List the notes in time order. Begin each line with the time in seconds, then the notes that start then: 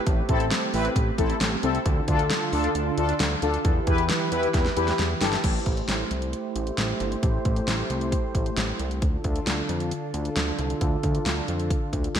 Already playing: A3 C4 G4
0.07 A1, kick, closed hi-hat
0.29 A1 C4 E4 A4, kick, closed hi-hat
0.40 closed hi-hat
0.51 snare, closed hi-hat
0.74 A1 C4 E4 B4, open hi-hat
0.85 closed hi-hat
0.96 A1, kick, closed hi-hat
1.18 A1 C4 E4 A4, kick, closed hi-hat
1.30 closed hi-hat
1.41 A1, snare, closed hi-hat
1.63 C2 C4 E4 A4, closed hi-hat
1.75 closed hi-hat
1.86 D2 D3 D4 F4 A4, kick, closed hi-hat
2.08 D2 D4 F4 A4, kick, closed hi-hat
2.19 closed hi-hat
2.30 snare, closed hi-hat
2.53 D2 D4 F4 A4, open hi-hat
2.64 closed hi-hat
2.75 D2, closed hi-hat
2.98 D2 D4 F4 A4, closed hi-hat
3.09 closed hi-hat
3.20 D2, snare, closed hi-hat
3.42 D2 D4 F4 A4, closed hi-hat
3.54 closed hi-hat
3.65 E2 E3 E4 G4 B4, kick, closed hi-hat
3.87 E2 E4 G4 B4, kick, closed hi-hat
3.98 closed hi-hat
4.09 snare, closed hi-hat
4.32 E2 E4 G4 B4, closed hi-hat
4.43 closed hi-hat
4.54 E2, kick, snare, closed hi-hat
4.65 snare
4.77 E2 E4 G4 B4, closed hi-hat
4.88 snare, closed hi-hat
4.99 E2, snare, closed hi-hat
5.21 G1 E4 G4 A4, snare, open hi-hat
5.33 snare, closed hi-hat
5.44 A1 A3 E4 G4 C5, kick, closed hi-hat, crash
5.66 A1, kick, closed hi-hat
5.77 closed hi-hat
5.88 A1, snare, closed hi-hat
6.11 C2, closed hi-hat
6.22 closed hi-hat
6.33 closed hi-hat
6.56 A1, closed hi-hat
6.67 closed hi-hat
6.78 A1, snare, closed hi-hat
7.00 G1, closed hi-hat
7.12 closed hi-hat
7.23 A1, kick, closed hi-hat
7.45 A1, kick, closed hi-hat
7.56 closed hi-hat
7.68 A1, snare, closed hi-hat
7.90 C2, closed hi-hat
8.01 closed hi-hat
8.12 kick, closed hi-hat
8.35 A1, kick, closed hi-hat
8.46 closed hi-hat
8.57 A1, snare, closed hi-hat
8.79 C2, closed hi-hat
8.91 closed hi-hat
9.02 D2 D3 D4 F4 A4, kick, closed hi-hat
9.24 D2, kick, closed hi-hat
9.36 closed hi-hat
9.47 D2, snare, closed hi-hat
9.69 F2, closed hi-hat
9.80 closed hi-hat
9.91 closed hi-hat
10.14 D2, closed hi-hat
10.25 closed hi-hat
10.36 D2, snare, closed hi-hat
10.59 C2, closed hi-hat
10.70 closed hi-hat
10.81 D2, kick, closed hi-hat
11.03 D2, kick, closed hi-hat
11.15 closed hi-hat
11.26 D2, snare, closed hi-hat
11.48 F2, closed hi-hat
11.60 closed hi-hat
11.70 kick, closed hi-hat
11.93 D2, kick, closed hi-hat
12.04 closed hi-hat
12.15 D2, snare, closed hi-hat